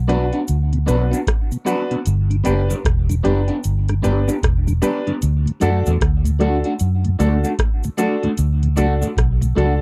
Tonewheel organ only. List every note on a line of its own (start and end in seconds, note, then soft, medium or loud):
0.09 0.18 F#3 medium
0.09 0.18 B3 medium
0.09 0.18 D4 medium
0.73 0.78 B2 medium
0.87 0.97 F#3 medium
0.87 0.97 B3 medium
0.87 0.97 D4 medium
1.11 1.17 B3 medium
1.11 1.17 D4 medium
1.52 1.57 B2 medium
1.66 1.75 F#3 medium
1.66 1.76 B3 medium
1.66 1.76 D4 medium
1.91 1.97 B2 medium
2.30 2.36 G2 medium
2.30 2.36 D3 medium
2.44 2.54 G3 medium
2.44 2.54 B3 medium
2.44 2.54 D4 medium
2.70 2.75 G2 medium
2.70 2.76 D3 medium
3.10 3.15 G2 medium
3.10 3.15 D3 medium
3.25 3.34 G3 medium
3.25 3.34 B3 medium
3.25 3.34 D4 medium
3.89 3.94 G2 medium
3.89 3.94 D3 medium
4.03 4.13 G3 medium
4.03 4.13 B3 medium
4.03 4.13 D4 medium
4.28 4.34 B3 medium
4.28 4.34 D4 medium
4.67 4.73 G2 medium
4.67 4.73 D3 medium
4.82 4.91 G3 medium
4.82 4.92 B3 medium
4.82 4.92 D4 medium
5.07 5.12 G2 medium
5.07 5.12 D3 medium
5.46 5.52 D2 medium
5.46 5.52 A2 medium
5.60 5.70 F#3 medium
5.60 5.70 A3 medium
5.60 5.70 D4 medium
5.86 5.92 D2 medium
5.86 5.92 A2 medium
6.25 6.31 D2 medium
6.25 6.31 A2 medium
6.39 6.49 F#3 medium
6.39 6.49 A3 medium
6.39 6.49 D4 medium
7.04 7.10 D2 medium
7.04 7.10 A2 medium
7.19 7.29 F#3 medium
7.19 7.29 A3 medium
7.19 7.29 D4 medium
7.45 7.50 A3 medium
7.45 7.50 D4 medium
7.85 7.90 D2 medium
7.85 7.90 A2 medium
7.98 8.08 F#3 medium
7.98 8.08 A3 medium
7.98 8.08 D4 medium
8.23 8.29 D2 medium
8.23 8.29 A2 medium
8.63 8.68 D2 medium
8.63 8.68 A2 medium
8.77 8.87 F#3 medium
8.77 8.87 A3 medium
8.77 8.87 D4 medium
9.02 9.08 D2 medium
9.02 9.08 A2 medium
9.41 9.47 D2 medium
9.41 9.47 A2 medium
9.56 9.66 F#3 medium
9.56 9.66 A3 medium
9.56 9.66 D4 medium